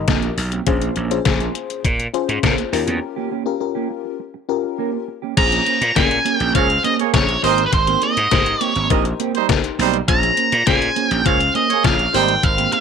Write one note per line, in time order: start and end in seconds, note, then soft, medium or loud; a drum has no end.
0.00 0.33 D#4 medium
0.00 0.33 G4 medium
0.00 0.33 A#4 medium
0.00 0.33 D#5 loud
0.07 0.30 A#1 medium
0.07 0.26 A#3 medium
0.07 0.22 C4 medium
0.07 0.22 G#4 loud
0.07 kick loud
0.07 snare loud
0.07 closed hi-hat medium
0.22 muted clean electric guitar stroke soft
0.22 closed hi-hat medium
0.37 0.59 B1 medium
0.37 muted clean electric guitar stroke soft
0.37 open hi-hat medium
0.52 0.65 A#3 soft
0.52 0.66 C4 medium
0.52 0.66 G4 medium
0.52 closed hi-hat medium
0.66 0.89 A#1 loud
0.66 0.94 C#4 loud
0.66 0.94 F4 medium
0.66 0.94 G#4 medium
0.66 0.94 C5 loud
0.66 muted clean electric guitar stroke soft
0.66 kick loud
0.66 closed hi-hat loud
0.81 0.95 A#3 medium
0.81 0.95 C#4 medium
0.81 0.96 G#4 medium
0.81 closed hi-hat medium
0.96 1.18 A#1 loud
0.96 1.10 A#3 medium
0.96 1.10 C#4 medium
0.96 1.09 G#4 medium
0.96 closed hi-hat medium
1.10 1.20 C#4 loud
1.10 1.20 F4 medium
1.10 1.20 G#4 medium
1.10 1.20 C5 loud
1.10 muted clean electric guitar stroke soft
1.10 closed hi-hat medium
1.25 1.48 A#1 medium
1.25 1.80 C#4 medium
1.25 1.80 F4 medium
1.25 1.80 G#4 medium
1.25 1.80 C5 loud
1.25 kick loud
1.25 snare loud
1.25 closed hi-hat medium
1.40 1.53 A#3 medium
1.40 1.54 C#4 medium
1.40 1.54 G#4 medium
1.40 closed hi-hat medium
1.55 muted clean electric guitar stroke soft
1.55 closed hi-hat medium
1.70 muted clean electric guitar stroke soft
1.70 closed hi-hat soft
1.84 2.07 A#2 loud
1.84 muted clean electric guitar stroke soft
1.84 kick loud
1.84 closed hi-hat medium
1.99 muted clean electric guitar stroke soft
1.99 closed hi-hat medium
2.14 2.68 C#4 medium
2.14 2.68 F4 medium
2.14 2.69 G#4 medium
2.14 2.69 C5 loud
2.14 closed hi-hat medium
2.28 2.40 G#2 medium
2.28 muted clean electric guitar stroke soft
2.28 closed hi-hat medium
2.43 2.54 A#2 loud
2.43 2.61 A#3 medium
2.43 2.57 C#4 medium
2.43 2.57 A#4 medium
2.43 kick loud
2.43 snare loud
2.43 closed hi-hat medium
2.58 muted clean electric guitar stroke soft
2.58 closed hi-hat medium
2.72 2.84 D#2 medium
2.72 3.31 C#4 medium
2.72 3.31 F4 medium
2.72 3.31 G4 medium
2.72 3.32 A#4 loud
2.72 muted clean electric guitar stroke soft
2.72 open hi-hat medium
2.87 2.98 E2 medium
2.87 3.01 A#3 soft
2.87 3.01 C#4 soft
2.87 3.01 G4 medium
2.87 closed hi-hat medium
3.02 muted clean electric guitar stroke soft
3.16 3.30 A#3 medium
3.16 3.30 C#4 medium
3.16 3.31 G4 medium
3.31 3.45 A#3 medium
3.31 3.46 C#4 medium
3.31 3.45 G4 medium
3.46 3.55 C#4 loud
3.46 3.55 F4 medium
3.46 3.55 G4 medium
3.46 3.55 A#4 loud
3.46 muted clean electric guitar stroke medium
3.60 4.15 C#4 medium
3.60 4.15 F4 medium
3.60 4.15 G4 medium
3.60 4.16 A#4 medium
3.60 muted clean electric guitar stroke soft
3.75 3.89 A#3 medium
3.75 3.89 C#4 medium
3.75 3.90 G4 medium
3.90 muted clean electric guitar stroke soft
4.05 muted clean electric guitar stroke soft
4.19 muted clean electric guitar stroke soft
4.34 muted clean electric guitar stroke medium
4.49 5.03 C#4 medium
4.49 5.04 F4 medium
4.49 5.04 G4 medium
4.49 5.04 A#4 loud
4.64 muted clean electric guitar stroke soft
4.78 4.96 A#3 medium
4.78 4.93 C#4 medium
4.78 4.93 A#4 medium
4.93 muted clean electric guitar stroke soft
5.08 muted clean electric guitar stroke soft
5.22 5.36 A#3 soft
5.22 5.36 C#4 medium
5.22 5.37 G4 medium
5.37 5.59 A#1 loud
5.37 5.74 C#4 medium
5.37 5.74 F4 medium
5.37 5.74 G#4 medium
5.37 5.74 C5 medium
5.37 5.96 A#5 loud
5.37 kick loud
5.37 closed hi-hat loud
5.37 crash loud
5.51 5.65 A#3 medium
5.51 5.65 C#4 medium
5.51 5.67 G#4 medium
5.51 closed hi-hat medium
5.66 5.80 A#3 medium
5.66 5.81 C#4 medium
5.66 5.80 A#4 medium
5.66 closed hi-hat medium
5.81 5.92 A#2 loud
5.81 muted clean electric guitar stroke soft
5.81 closed hi-hat medium
5.95 6.18 A#2 loud
5.95 6.32 C#4 medium
5.95 6.32 F4 medium
5.95 6.33 G#4 medium
5.95 6.33 A#4 medium
5.95 6.36 G#5 loud
5.95 muted clean electric guitar stroke soft
5.95 kick loud
5.95 snare loud
5.95 closed hi-hat medium
6.10 muted clean electric guitar stroke soft
6.10 closed hi-hat medium
6.25 6.39 A#3 medium
6.25 6.39 C#4 medium
6.25 6.38 G#4 medium
6.25 closed hi-hat medium
6.36 6.54 G#4 medium
6.36 6.51 G5 loud
6.40 6.51 A#1 medium
6.40 6.55 A#3 medium
6.40 6.54 C#4 medium
6.40 closed hi-hat soft
6.55 6.77 C#2 loud
6.55 6.68 A#3 medium
6.55 6.91 C#4 medium
6.55 6.91 F4 medium
6.55 6.68 G#4 medium
6.55 6.92 G#4 medium
6.55 6.92 C5 medium
6.55 6.68 C#5 loud
6.55 6.85 F5 loud
6.55 kick loud
6.55 closed hi-hat medium
6.69 muted clean electric guitar stroke medium
6.69 closed hi-hat medium
6.84 7.02 A#3 loud
6.84 6.98 C#4 loud
6.84 6.97 G#4 loud
6.84 6.93 D#5 medium
6.84 closed hi-hat medium
6.99 7.12 A#3 medium
6.99 7.12 G#4 medium
6.99 7.12 C#5 medium
6.99 muted clean electric guitar stroke soft
6.99 closed hi-hat medium
7.14 7.36 A#1 medium
7.14 7.43 C#4 medium
7.14 7.43 F4 medium
7.14 7.43 G#4 medium
7.14 7.43 C5 medium
7.14 7.43 C#5 medium
7.14 kick loud
7.14 snare loud
7.14 closed hi-hat medium
7.28 muted clean electric guitar stroke medium
7.28 closed hi-hat medium
7.43 7.65 G#1 medium
7.43 7.61 A#3 medium
7.43 7.62 C4 loud
7.43 7.57 C4 medium
7.43 8.14 D#4 medium
7.43 8.14 G4 medium
7.43 7.57 G4 loud
7.43 8.14 A#4 medium
7.43 7.62 A#4 loud
7.43 8.14 C5 medium
7.43 7.66 C5 medium
7.43 7.62 D#5 loud
7.43 open hi-hat medium
7.58 muted clean electric guitar stroke soft
7.58 closed hi-hat medium
7.66 7.73 B4 medium
7.73 7.95 G#1 loud
7.73 8.03 C5 medium
7.73 muted clean electric guitar stroke soft
7.73 kick loud
7.73 closed hi-hat medium
7.87 8.01 A#3 medium
7.87 8.01 C4 medium
7.87 8.03 G4 medium
7.87 closed hi-hat medium
8.02 8.16 A#3 medium
8.02 8.16 C4 medium
8.02 8.16 G#4 medium
8.02 8.63 D#5 medium
8.02 closed hi-hat medium
8.17 8.28 G#2 medium
8.17 muted clean electric guitar stroke soft
8.17 closed hi-hat medium
8.31 8.54 G#2 loud
8.31 8.68 D#4 medium
8.31 8.68 G4 medium
8.31 8.68 A#4 medium
8.31 8.68 C5 medium
8.31 muted clean electric guitar stroke medium
8.31 kick loud
8.31 snare loud
8.31 closed hi-hat medium
8.46 muted clean electric guitar stroke soft
8.46 closed hi-hat medium
8.61 8.75 A#3 medium
8.61 8.75 C4 loud
8.61 8.74 G4 loud
8.61 8.87 C#5 medium
8.61 closed hi-hat medium
8.76 8.87 G#1 medium
8.76 8.90 A#3 medium
8.76 8.90 C4 medium
8.76 closed hi-hat soft
8.90 9.12 A#1 medium
8.90 9.03 C4 medium
8.90 9.27 D#4 medium
8.90 9.27 G4 medium
8.90 9.03 A#4 medium
8.90 9.27 A#4 medium
8.90 9.27 C5 medium
8.90 9.03 D#5 medium
8.90 kick loud
8.90 closed hi-hat medium
9.05 closed hi-hat medium
9.19 9.38 A#3 medium
9.19 9.34 C4 loud
9.19 9.33 G4 loud
9.19 closed hi-hat medium
9.35 9.47 G3 medium
9.35 9.47 D#4 medium
9.35 9.47 C5 medium
9.35 muted clean electric guitar stroke soft
9.35 closed hi-hat medium
9.49 9.85 D#4 medium
9.49 9.86 G4 medium
9.49 9.86 A#4 medium
9.49 9.86 C5 medium
9.49 kick loud
9.49 snare loud
9.49 closed hi-hat medium
9.64 muted clean electric guitar stroke medium
9.64 closed hi-hat medium
9.78 10.01 B1 medium
9.78 9.98 G3 loud
9.78 9.97 A#3 medium
9.78 9.93 C4 medium
9.78 9.98 D#4 loud
9.78 9.92 G4 medium
9.78 9.98 C5 loud
9.78 open hi-hat medium
9.93 muted clean electric guitar stroke medium
9.93 closed hi-hat medium
10.08 10.30 A#1 loud
10.08 10.44 C#4 medium
10.08 10.45 F4 medium
10.08 10.45 G#4 medium
10.08 10.45 C5 medium
10.08 10.67 A#5 loud
10.08 muted clean electric guitar stroke soft
10.08 kick loud
10.08 closed hi-hat loud
10.22 10.36 A#3 medium
10.22 10.37 C#4 medium
10.22 10.38 G#4 medium
10.22 closed hi-hat medium
10.37 10.51 A#3 medium
10.37 10.52 C#4 medium
10.37 10.52 A#4 medium
10.37 closed hi-hat medium
10.52 10.63 A#2 loud
10.52 muted clean electric guitar stroke soft
10.52 closed hi-hat medium
10.67 10.89 A#2 loud
10.67 11.03 C#4 medium
10.67 11.03 F4 medium
10.67 11.03 G#4 medium
10.67 11.04 C5 medium
10.67 11.10 G#5 loud
10.67 kick loud
10.67 snare loud
10.67 closed hi-hat medium
10.81 muted clean electric guitar stroke soft
10.81 closed hi-hat medium
10.96 11.11 A#3 medium
10.96 11.10 C#4 medium
10.96 11.09 G#4 medium
10.96 closed hi-hat medium
11.10 11.22 A#1 loud
11.10 11.26 A#3 soft
11.10 11.25 C#4 medium
11.10 11.25 G#4 medium
11.10 11.28 G5 loud
11.10 closed hi-hat medium
11.25 11.48 C#2 loud
11.25 11.38 A#3 medium
11.25 11.62 C#4 medium
11.25 11.62 F4 medium
11.25 11.62 G#4 medium
11.25 11.38 G#4 medium
11.25 11.62 C5 medium
11.25 11.38 C#5 loud
11.25 11.55 F5 loud
11.25 kick loud
11.25 closed hi-hat medium
11.40 muted clean electric guitar stroke soft
11.40 closed hi-hat medium
11.55 11.73 A#3 medium
11.55 11.69 C#4 medium
11.55 11.68 G#4 medium
11.55 11.85 D#5 medium
11.55 closed hi-hat medium
11.69 11.82 A#3 medium
11.69 11.82 G#4 medium
11.69 11.82 C#5 loud
11.69 muted clean electric guitar stroke soft
11.69 closed hi-hat medium
11.84 12.06 A#1 medium
11.84 12.14 C#4 medium
11.84 12.14 F4 medium
11.84 12.14 G#4 medium
11.84 12.14 C#5 medium
11.84 12.15 F5 medium
11.84 kick loud
11.84 snare loud
11.84 closed hi-hat medium
11.99 closed hi-hat medium
12.13 12.36 G#1 medium
12.13 12.33 G3 loud
12.13 12.32 A#3 medium
12.13 12.28 C4 medium
12.13 12.80 D#4 medium
12.13 12.33 D#4 medium
12.13 12.80 G4 medium
12.13 12.27 G4 medium
12.13 12.80 A#4 medium
12.13 12.33 C5 loud
12.13 12.80 C5 medium
12.13 12.45 G5 loud
12.13 open hi-hat medium
12.28 muted clean electric guitar stroke medium
12.28 closed hi-hat medium
12.43 12.65 G#1 loud
12.43 12.73 F5 loud
12.43 muted clean electric guitar stroke soft
12.43 kick loud
12.43 closed hi-hat loud
12.57 12.71 A#3 medium
12.57 12.72 C4 medium
12.57 12.73 G4 loud
12.57 closed hi-hat medium
12.72 12.80 A#3 medium
12.72 12.80 C4 medium
12.72 12.80 G#4 medium
12.72 12.80 D#5 medium
12.72 closed hi-hat medium